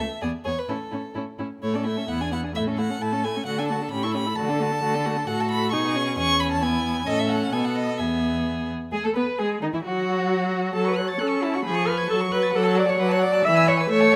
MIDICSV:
0, 0, Header, 1, 5, 480
1, 0, Start_track
1, 0, Key_signature, 3, "major"
1, 0, Tempo, 463679
1, 720, Time_signature, 2, 2, 24, 8
1, 3117, Tempo, 450789
1, 5528, Key_signature, 4, "major"
1, 7437, Tempo, 463679
1, 10317, Tempo, 451128
1, 14901, End_track
2, 0, Start_track
2, 0, Title_t, "Violin"
2, 0, Program_c, 0, 40
2, 0, Note_on_c, 0, 76, 68
2, 222, Note_off_c, 0, 76, 0
2, 228, Note_on_c, 0, 74, 58
2, 311, Note_off_c, 0, 74, 0
2, 465, Note_on_c, 0, 73, 68
2, 602, Note_on_c, 0, 71, 58
2, 617, Note_off_c, 0, 73, 0
2, 717, Note_on_c, 0, 69, 50
2, 732, Note_off_c, 0, 71, 0
2, 1202, Note_off_c, 0, 69, 0
2, 1683, Note_on_c, 0, 73, 70
2, 1806, Note_on_c, 0, 74, 59
2, 1821, Note_off_c, 0, 73, 0
2, 1915, Note_off_c, 0, 74, 0
2, 1921, Note_on_c, 0, 76, 57
2, 2155, Note_on_c, 0, 78, 62
2, 2171, Note_off_c, 0, 76, 0
2, 2291, Note_on_c, 0, 80, 60
2, 2307, Note_off_c, 0, 78, 0
2, 2397, Note_off_c, 0, 80, 0
2, 2403, Note_on_c, 0, 78, 68
2, 2486, Note_off_c, 0, 78, 0
2, 2640, Note_on_c, 0, 76, 76
2, 2723, Note_off_c, 0, 76, 0
2, 2878, Note_on_c, 0, 78, 68
2, 3123, Note_on_c, 0, 81, 72
2, 3139, Note_off_c, 0, 78, 0
2, 3362, Note_on_c, 0, 80, 77
2, 3378, Note_off_c, 0, 81, 0
2, 3588, Note_off_c, 0, 80, 0
2, 3594, Note_on_c, 0, 78, 73
2, 3731, Note_on_c, 0, 80, 68
2, 3747, Note_off_c, 0, 78, 0
2, 3821, Note_off_c, 0, 80, 0
2, 3827, Note_on_c, 0, 81, 65
2, 4071, Note_off_c, 0, 81, 0
2, 4076, Note_on_c, 0, 83, 73
2, 4201, Note_on_c, 0, 85, 74
2, 4217, Note_off_c, 0, 83, 0
2, 4313, Note_off_c, 0, 85, 0
2, 4319, Note_on_c, 0, 83, 78
2, 4555, Note_on_c, 0, 81, 87
2, 4571, Note_off_c, 0, 83, 0
2, 5524, Note_on_c, 0, 78, 87
2, 5540, Note_off_c, 0, 81, 0
2, 5666, Note_on_c, 0, 81, 76
2, 5682, Note_off_c, 0, 78, 0
2, 5769, Note_off_c, 0, 81, 0
2, 5775, Note_on_c, 0, 83, 87
2, 5991, Note_off_c, 0, 83, 0
2, 5997, Note_on_c, 0, 85, 76
2, 6469, Note_off_c, 0, 85, 0
2, 6490, Note_on_c, 0, 85, 106
2, 6724, Note_on_c, 0, 83, 72
2, 6740, Note_off_c, 0, 85, 0
2, 6841, Note_off_c, 0, 83, 0
2, 6849, Note_on_c, 0, 81, 79
2, 6962, Note_on_c, 0, 80, 78
2, 6978, Note_off_c, 0, 81, 0
2, 7434, Note_on_c, 0, 75, 98
2, 7449, Note_off_c, 0, 80, 0
2, 7566, Note_on_c, 0, 76, 68
2, 7581, Note_off_c, 0, 75, 0
2, 7662, Note_on_c, 0, 78, 76
2, 7677, Note_off_c, 0, 76, 0
2, 7912, Note_on_c, 0, 80, 74
2, 7927, Note_off_c, 0, 78, 0
2, 8036, Note_on_c, 0, 78, 73
2, 8052, Note_off_c, 0, 80, 0
2, 8146, Note_on_c, 0, 75, 84
2, 8162, Note_off_c, 0, 78, 0
2, 8377, Note_on_c, 0, 76, 69
2, 8393, Note_off_c, 0, 75, 0
2, 9116, Note_off_c, 0, 76, 0
2, 9349, Note_on_c, 0, 68, 60
2, 9467, Note_off_c, 0, 68, 0
2, 9475, Note_on_c, 0, 69, 56
2, 9524, Note_off_c, 0, 69, 0
2, 9597, Note_on_c, 0, 71, 60
2, 9680, Note_off_c, 0, 71, 0
2, 9831, Note_on_c, 0, 68, 56
2, 9914, Note_off_c, 0, 68, 0
2, 10080, Note_on_c, 0, 63, 62
2, 10128, Note_off_c, 0, 63, 0
2, 10193, Note_on_c, 0, 64, 43
2, 10287, Note_off_c, 0, 64, 0
2, 10293, Note_on_c, 0, 66, 63
2, 11246, Note_off_c, 0, 66, 0
2, 11270, Note_on_c, 0, 81, 46
2, 12249, Note_on_c, 0, 85, 54
2, 12265, Note_off_c, 0, 81, 0
2, 13178, Note_off_c, 0, 85, 0
2, 13185, Note_on_c, 0, 86, 57
2, 13306, Note_on_c, 0, 90, 53
2, 13322, Note_off_c, 0, 86, 0
2, 13425, Note_on_c, 0, 86, 54
2, 13441, Note_off_c, 0, 90, 0
2, 13552, Note_on_c, 0, 90, 54
2, 13568, Note_off_c, 0, 86, 0
2, 13663, Note_off_c, 0, 90, 0
2, 13669, Note_on_c, 0, 86, 58
2, 13788, Note_on_c, 0, 90, 58
2, 13804, Note_off_c, 0, 86, 0
2, 13898, Note_on_c, 0, 86, 67
2, 13914, Note_off_c, 0, 90, 0
2, 14024, Note_on_c, 0, 90, 56
2, 14040, Note_off_c, 0, 86, 0
2, 14143, Note_off_c, 0, 90, 0
2, 14149, Note_on_c, 0, 83, 66
2, 14267, Note_on_c, 0, 88, 60
2, 14283, Note_off_c, 0, 83, 0
2, 14385, Note_on_c, 0, 83, 58
2, 14401, Note_off_c, 0, 88, 0
2, 14504, Note_on_c, 0, 88, 55
2, 14520, Note_off_c, 0, 83, 0
2, 14623, Note_off_c, 0, 88, 0
2, 14630, Note_on_c, 0, 85, 58
2, 14746, Note_on_c, 0, 88, 66
2, 14762, Note_off_c, 0, 85, 0
2, 14887, Note_off_c, 0, 88, 0
2, 14901, End_track
3, 0, Start_track
3, 0, Title_t, "Violin"
3, 0, Program_c, 1, 40
3, 225, Note_on_c, 1, 68, 44
3, 308, Note_off_c, 1, 68, 0
3, 464, Note_on_c, 1, 68, 37
3, 547, Note_off_c, 1, 68, 0
3, 714, Note_on_c, 1, 64, 39
3, 796, Note_off_c, 1, 64, 0
3, 946, Note_on_c, 1, 64, 27
3, 1029, Note_off_c, 1, 64, 0
3, 1190, Note_on_c, 1, 64, 39
3, 1273, Note_off_c, 1, 64, 0
3, 1436, Note_on_c, 1, 64, 34
3, 1519, Note_off_c, 1, 64, 0
3, 1681, Note_on_c, 1, 64, 48
3, 1798, Note_on_c, 1, 69, 45
3, 1814, Note_off_c, 1, 64, 0
3, 1908, Note_on_c, 1, 64, 40
3, 1924, Note_off_c, 1, 69, 0
3, 2038, Note_on_c, 1, 69, 34
3, 2054, Note_off_c, 1, 64, 0
3, 2154, Note_off_c, 1, 69, 0
3, 2160, Note_on_c, 1, 64, 47
3, 2285, Note_on_c, 1, 68, 44
3, 2301, Note_off_c, 1, 64, 0
3, 2411, Note_on_c, 1, 64, 41
3, 2427, Note_off_c, 1, 68, 0
3, 2526, Note_on_c, 1, 68, 42
3, 2542, Note_off_c, 1, 64, 0
3, 2632, Note_off_c, 1, 68, 0
3, 2639, Note_on_c, 1, 64, 44
3, 2770, Note_on_c, 1, 69, 49
3, 2786, Note_off_c, 1, 64, 0
3, 2881, Note_on_c, 1, 64, 39
3, 2897, Note_off_c, 1, 69, 0
3, 3009, Note_on_c, 1, 69, 37
3, 3025, Note_off_c, 1, 64, 0
3, 3121, Note_off_c, 1, 69, 0
3, 3130, Note_on_c, 1, 64, 45
3, 3240, Note_on_c, 1, 69, 43
3, 3256, Note_off_c, 1, 64, 0
3, 3370, Note_on_c, 1, 64, 38
3, 3386, Note_off_c, 1, 69, 0
3, 3490, Note_on_c, 1, 69, 37
3, 3506, Note_off_c, 1, 64, 0
3, 3597, Note_off_c, 1, 69, 0
3, 3603, Note_on_c, 1, 66, 46
3, 3727, Note_on_c, 1, 69, 45
3, 3743, Note_off_c, 1, 66, 0
3, 3864, Note_on_c, 1, 66, 41
3, 3880, Note_off_c, 1, 69, 0
3, 3990, Note_on_c, 1, 69, 45
3, 4006, Note_off_c, 1, 66, 0
3, 4097, Note_off_c, 1, 69, 0
3, 4109, Note_on_c, 1, 67, 48
3, 4221, Note_on_c, 1, 69, 52
3, 4237, Note_off_c, 1, 67, 0
3, 4337, Note_on_c, 1, 67, 44
3, 4353, Note_off_c, 1, 69, 0
3, 4460, Note_on_c, 1, 69, 43
3, 4476, Note_off_c, 1, 67, 0
3, 4570, Note_off_c, 1, 69, 0
3, 4577, Note_on_c, 1, 66, 49
3, 4696, Note_on_c, 1, 69, 53
3, 4712, Note_off_c, 1, 66, 0
3, 4829, Note_on_c, 1, 66, 39
3, 4845, Note_off_c, 1, 69, 0
3, 4939, Note_on_c, 1, 69, 45
3, 4955, Note_off_c, 1, 66, 0
3, 5053, Note_off_c, 1, 69, 0
3, 5059, Note_on_c, 1, 66, 51
3, 5173, Note_on_c, 1, 69, 53
3, 5189, Note_off_c, 1, 66, 0
3, 5295, Note_on_c, 1, 66, 48
3, 5311, Note_off_c, 1, 69, 0
3, 5427, Note_on_c, 1, 69, 48
3, 5443, Note_off_c, 1, 66, 0
3, 5533, Note_off_c, 1, 69, 0
3, 5539, Note_on_c, 1, 69, 56
3, 6010, Note_on_c, 1, 68, 61
3, 6025, Note_off_c, 1, 69, 0
3, 6479, Note_off_c, 1, 68, 0
3, 6485, Note_on_c, 1, 68, 56
3, 6945, Note_off_c, 1, 68, 0
3, 6951, Note_on_c, 1, 64, 64
3, 7423, Note_off_c, 1, 64, 0
3, 7443, Note_on_c, 1, 69, 61
3, 7879, Note_off_c, 1, 69, 0
3, 7918, Note_on_c, 1, 69, 56
3, 8388, Note_on_c, 1, 68, 52
3, 8403, Note_off_c, 1, 69, 0
3, 9153, Note_off_c, 1, 68, 0
3, 9365, Note_on_c, 1, 68, 59
3, 9485, Note_on_c, 1, 69, 64
3, 9501, Note_off_c, 1, 68, 0
3, 9597, Note_off_c, 1, 69, 0
3, 9603, Note_on_c, 1, 71, 49
3, 9836, Note_off_c, 1, 71, 0
3, 9854, Note_on_c, 1, 68, 63
3, 9936, Note_off_c, 1, 68, 0
3, 10079, Note_on_c, 1, 63, 48
3, 10126, Note_off_c, 1, 63, 0
3, 10204, Note_on_c, 1, 64, 49
3, 10250, Note_off_c, 1, 64, 0
3, 10311, Note_on_c, 1, 66, 73
3, 11256, Note_off_c, 1, 66, 0
3, 11270, Note_on_c, 1, 81, 48
3, 11384, Note_on_c, 1, 85, 54
3, 11400, Note_off_c, 1, 81, 0
3, 11498, Note_on_c, 1, 90, 47
3, 11514, Note_off_c, 1, 85, 0
3, 11624, Note_on_c, 1, 93, 46
3, 11640, Note_off_c, 1, 90, 0
3, 11742, Note_on_c, 1, 90, 51
3, 11758, Note_off_c, 1, 93, 0
3, 11849, Note_on_c, 1, 85, 54
3, 11864, Note_off_c, 1, 90, 0
3, 11995, Note_on_c, 1, 81, 49
3, 12011, Note_off_c, 1, 85, 0
3, 12109, Note_on_c, 1, 85, 52
3, 12125, Note_off_c, 1, 81, 0
3, 12214, Note_off_c, 1, 85, 0
3, 12220, Note_on_c, 1, 83, 53
3, 12337, Note_on_c, 1, 85, 52
3, 12353, Note_off_c, 1, 83, 0
3, 12458, Note_on_c, 1, 89, 47
3, 12474, Note_off_c, 1, 85, 0
3, 12575, Note_on_c, 1, 92, 51
3, 12591, Note_off_c, 1, 89, 0
3, 12701, Note_off_c, 1, 92, 0
3, 12707, Note_on_c, 1, 81, 57
3, 12823, Note_on_c, 1, 85, 55
3, 12839, Note_off_c, 1, 81, 0
3, 12944, Note_on_c, 1, 90, 54
3, 12960, Note_off_c, 1, 85, 0
3, 13054, Note_on_c, 1, 93, 57
3, 13070, Note_off_c, 1, 90, 0
3, 13159, Note_off_c, 1, 93, 0
3, 13165, Note_on_c, 1, 78, 52
3, 13278, Note_on_c, 1, 81, 60
3, 13294, Note_off_c, 1, 78, 0
3, 13405, Note_on_c, 1, 78, 48
3, 13421, Note_off_c, 1, 81, 0
3, 13520, Note_on_c, 1, 81, 45
3, 13536, Note_off_c, 1, 78, 0
3, 13634, Note_off_c, 1, 81, 0
3, 13640, Note_on_c, 1, 78, 61
3, 13765, Note_on_c, 1, 81, 58
3, 13781, Note_off_c, 1, 78, 0
3, 13874, Note_on_c, 1, 78, 53
3, 13890, Note_off_c, 1, 81, 0
3, 14014, Note_on_c, 1, 81, 49
3, 14030, Note_off_c, 1, 78, 0
3, 14118, Note_off_c, 1, 81, 0
3, 14125, Note_on_c, 1, 76, 57
3, 14248, Note_on_c, 1, 80, 65
3, 14264, Note_off_c, 1, 76, 0
3, 14374, Note_on_c, 1, 76, 56
3, 14390, Note_off_c, 1, 80, 0
3, 14487, Note_on_c, 1, 80, 55
3, 14503, Note_off_c, 1, 76, 0
3, 14605, Note_off_c, 1, 80, 0
3, 14611, Note_on_c, 1, 76, 66
3, 14739, Note_on_c, 1, 81, 60
3, 14755, Note_off_c, 1, 76, 0
3, 14862, Note_on_c, 1, 76, 59
3, 14878, Note_off_c, 1, 81, 0
3, 14901, Note_off_c, 1, 76, 0
3, 14901, End_track
4, 0, Start_track
4, 0, Title_t, "Cello"
4, 0, Program_c, 2, 42
4, 231, Note_on_c, 2, 40, 52
4, 314, Note_off_c, 2, 40, 0
4, 474, Note_on_c, 2, 40, 50
4, 557, Note_off_c, 2, 40, 0
4, 708, Note_on_c, 2, 45, 47
4, 791, Note_off_c, 2, 45, 0
4, 951, Note_on_c, 2, 45, 37
4, 1034, Note_off_c, 2, 45, 0
4, 1188, Note_on_c, 2, 45, 43
4, 1271, Note_off_c, 2, 45, 0
4, 1434, Note_on_c, 2, 45, 44
4, 1517, Note_off_c, 2, 45, 0
4, 1675, Note_on_c, 2, 45, 56
4, 2102, Note_off_c, 2, 45, 0
4, 2161, Note_on_c, 2, 40, 54
4, 2584, Note_off_c, 2, 40, 0
4, 2644, Note_on_c, 2, 45, 64
4, 3061, Note_off_c, 2, 45, 0
4, 3111, Note_on_c, 2, 45, 57
4, 3540, Note_off_c, 2, 45, 0
4, 3597, Note_on_c, 2, 50, 56
4, 4025, Note_off_c, 2, 50, 0
4, 4075, Note_on_c, 2, 45, 62
4, 4504, Note_off_c, 2, 45, 0
4, 4572, Note_on_c, 2, 50, 70
4, 4993, Note_off_c, 2, 50, 0
4, 5049, Note_on_c, 2, 50, 65
4, 5472, Note_off_c, 2, 50, 0
4, 5532, Note_on_c, 2, 45, 68
4, 6009, Note_on_c, 2, 47, 72
4, 6025, Note_off_c, 2, 45, 0
4, 6478, Note_on_c, 2, 40, 68
4, 6494, Note_off_c, 2, 47, 0
4, 7434, Note_off_c, 2, 40, 0
4, 7444, Note_on_c, 2, 45, 72
4, 7879, Note_off_c, 2, 45, 0
4, 7910, Note_on_c, 2, 47, 57
4, 8392, Note_on_c, 2, 40, 56
4, 8408, Note_off_c, 2, 47, 0
4, 9155, Note_off_c, 2, 40, 0
4, 9357, Note_on_c, 2, 68, 72
4, 9471, Note_off_c, 2, 68, 0
4, 9494, Note_on_c, 2, 69, 54
4, 9593, Note_off_c, 2, 69, 0
4, 9599, Note_on_c, 2, 71, 67
4, 9836, Note_on_c, 2, 68, 75
4, 9852, Note_off_c, 2, 71, 0
4, 10070, Note_off_c, 2, 68, 0
4, 10076, Note_on_c, 2, 63, 66
4, 10124, Note_off_c, 2, 63, 0
4, 10199, Note_on_c, 2, 64, 60
4, 10246, Note_off_c, 2, 64, 0
4, 10309, Note_on_c, 2, 66, 75
4, 11255, Note_off_c, 2, 66, 0
4, 11272, Note_on_c, 2, 69, 81
4, 11410, Note_on_c, 2, 71, 71
4, 11426, Note_off_c, 2, 69, 0
4, 11527, Note_on_c, 2, 73, 68
4, 11543, Note_off_c, 2, 71, 0
4, 11761, Note_on_c, 2, 69, 77
4, 11777, Note_off_c, 2, 73, 0
4, 11999, Note_on_c, 2, 64, 79
4, 12015, Note_off_c, 2, 69, 0
4, 12127, Note_on_c, 2, 66, 67
4, 12143, Note_off_c, 2, 64, 0
4, 12230, Note_off_c, 2, 66, 0
4, 12236, Note_on_c, 2, 68, 96
4, 12475, Note_on_c, 2, 71, 83
4, 12491, Note_off_c, 2, 68, 0
4, 12704, Note_off_c, 2, 71, 0
4, 12711, Note_on_c, 2, 69, 93
4, 12796, Note_off_c, 2, 69, 0
4, 12950, Note_on_c, 2, 71, 91
4, 13192, Note_on_c, 2, 69, 98
4, 13208, Note_off_c, 2, 71, 0
4, 13433, Note_on_c, 2, 74, 93
4, 13448, Note_off_c, 2, 69, 0
4, 13555, Note_on_c, 2, 73, 84
4, 13571, Note_off_c, 2, 74, 0
4, 13665, Note_on_c, 2, 71, 93
4, 13681, Note_off_c, 2, 73, 0
4, 13800, Note_on_c, 2, 73, 84
4, 13816, Note_off_c, 2, 71, 0
4, 13907, Note_on_c, 2, 74, 109
4, 13923, Note_off_c, 2, 73, 0
4, 14148, Note_on_c, 2, 76, 120
4, 14164, Note_off_c, 2, 74, 0
4, 14390, Note_on_c, 2, 73, 99
4, 14406, Note_off_c, 2, 76, 0
4, 14524, Note_on_c, 2, 71, 81
4, 14540, Note_off_c, 2, 73, 0
4, 14630, Note_on_c, 2, 73, 117
4, 14646, Note_off_c, 2, 71, 0
4, 14901, Note_off_c, 2, 73, 0
4, 14901, End_track
5, 0, Start_track
5, 0, Title_t, "Viola"
5, 0, Program_c, 3, 41
5, 246, Note_on_c, 3, 59, 42
5, 329, Note_off_c, 3, 59, 0
5, 484, Note_on_c, 3, 59, 34
5, 567, Note_off_c, 3, 59, 0
5, 726, Note_on_c, 3, 61, 39
5, 808, Note_off_c, 3, 61, 0
5, 965, Note_on_c, 3, 61, 40
5, 1048, Note_off_c, 3, 61, 0
5, 1210, Note_on_c, 3, 61, 36
5, 1293, Note_off_c, 3, 61, 0
5, 1446, Note_on_c, 3, 61, 34
5, 1529, Note_off_c, 3, 61, 0
5, 1691, Note_on_c, 3, 57, 46
5, 1814, Note_on_c, 3, 61, 46
5, 1830, Note_off_c, 3, 57, 0
5, 1925, Note_on_c, 3, 57, 44
5, 1940, Note_off_c, 3, 61, 0
5, 2042, Note_on_c, 3, 61, 43
5, 2057, Note_off_c, 3, 57, 0
5, 2160, Note_off_c, 3, 61, 0
5, 2166, Note_on_c, 3, 59, 43
5, 2286, Note_on_c, 3, 62, 39
5, 2301, Note_off_c, 3, 59, 0
5, 2399, Note_on_c, 3, 59, 38
5, 2414, Note_off_c, 3, 62, 0
5, 2519, Note_on_c, 3, 62, 36
5, 2534, Note_off_c, 3, 59, 0
5, 2633, Note_off_c, 3, 62, 0
5, 2639, Note_on_c, 3, 57, 47
5, 2760, Note_on_c, 3, 61, 41
5, 2776, Note_off_c, 3, 57, 0
5, 2880, Note_on_c, 3, 57, 44
5, 2895, Note_off_c, 3, 61, 0
5, 3000, Note_on_c, 3, 61, 46
5, 3016, Note_off_c, 3, 57, 0
5, 3114, Note_off_c, 3, 61, 0
5, 3120, Note_on_c, 3, 57, 44
5, 3238, Note_on_c, 3, 61, 43
5, 3254, Note_off_c, 3, 57, 0
5, 3366, Note_on_c, 3, 57, 44
5, 3382, Note_off_c, 3, 61, 0
5, 3493, Note_on_c, 3, 61, 39
5, 3509, Note_off_c, 3, 57, 0
5, 3601, Note_off_c, 3, 61, 0
5, 3607, Note_on_c, 3, 57, 47
5, 3733, Note_on_c, 3, 62, 46
5, 3749, Note_off_c, 3, 57, 0
5, 3851, Note_on_c, 3, 57, 47
5, 3867, Note_off_c, 3, 62, 0
5, 3970, Note_on_c, 3, 62, 43
5, 3986, Note_off_c, 3, 57, 0
5, 4087, Note_off_c, 3, 62, 0
5, 4094, Note_on_c, 3, 61, 45
5, 4213, Note_on_c, 3, 64, 47
5, 4229, Note_off_c, 3, 61, 0
5, 4326, Note_on_c, 3, 61, 44
5, 4342, Note_off_c, 3, 64, 0
5, 4446, Note_on_c, 3, 64, 41
5, 4462, Note_off_c, 3, 61, 0
5, 4559, Note_off_c, 3, 64, 0
5, 4566, Note_on_c, 3, 57, 50
5, 4687, Note_on_c, 3, 62, 53
5, 4703, Note_off_c, 3, 57, 0
5, 4806, Note_on_c, 3, 57, 48
5, 4822, Note_off_c, 3, 62, 0
5, 4932, Note_on_c, 3, 62, 43
5, 4948, Note_off_c, 3, 57, 0
5, 5049, Note_off_c, 3, 62, 0
5, 5058, Note_on_c, 3, 57, 50
5, 5182, Note_on_c, 3, 62, 45
5, 5198, Note_off_c, 3, 57, 0
5, 5300, Note_on_c, 3, 57, 51
5, 5316, Note_off_c, 3, 62, 0
5, 5414, Note_on_c, 3, 62, 49
5, 5430, Note_off_c, 3, 57, 0
5, 5531, Note_off_c, 3, 62, 0
5, 5538, Note_on_c, 3, 66, 59
5, 6009, Note_on_c, 3, 63, 66
5, 6025, Note_off_c, 3, 66, 0
5, 6252, Note_on_c, 3, 61, 62
5, 6268, Note_off_c, 3, 63, 0
5, 6483, Note_off_c, 3, 61, 0
5, 6489, Note_on_c, 3, 61, 57
5, 6963, Note_on_c, 3, 59, 55
5, 6978, Note_off_c, 3, 61, 0
5, 7427, Note_off_c, 3, 59, 0
5, 7433, Note_on_c, 3, 61, 62
5, 7909, Note_on_c, 3, 59, 56
5, 7925, Note_off_c, 3, 61, 0
5, 8381, Note_off_c, 3, 59, 0
5, 8388, Note_on_c, 3, 59, 53
5, 9137, Note_off_c, 3, 59, 0
5, 9362, Note_on_c, 3, 56, 62
5, 9410, Note_off_c, 3, 56, 0
5, 9487, Note_on_c, 3, 57, 64
5, 9534, Note_off_c, 3, 57, 0
5, 9604, Note_on_c, 3, 59, 65
5, 9687, Note_off_c, 3, 59, 0
5, 9844, Note_on_c, 3, 56, 64
5, 10075, Note_off_c, 3, 56, 0
5, 10086, Note_on_c, 3, 51, 47
5, 10196, Note_off_c, 3, 51, 0
5, 10202, Note_on_c, 3, 52, 43
5, 10249, Note_off_c, 3, 52, 0
5, 10322, Note_on_c, 3, 54, 72
5, 11262, Note_off_c, 3, 54, 0
5, 11285, Note_on_c, 3, 54, 63
5, 11680, Note_off_c, 3, 54, 0
5, 11762, Note_on_c, 3, 61, 58
5, 12159, Note_off_c, 3, 61, 0
5, 12241, Note_on_c, 3, 53, 63
5, 12638, Note_off_c, 3, 53, 0
5, 12719, Note_on_c, 3, 54, 61
5, 13111, Note_off_c, 3, 54, 0
5, 13193, Note_on_c, 3, 54, 82
5, 13613, Note_off_c, 3, 54, 0
5, 13665, Note_on_c, 3, 54, 71
5, 14091, Note_off_c, 3, 54, 0
5, 14152, Note_on_c, 3, 52, 89
5, 14576, Note_off_c, 3, 52, 0
5, 14628, Note_on_c, 3, 57, 86
5, 14901, Note_off_c, 3, 57, 0
5, 14901, End_track
0, 0, End_of_file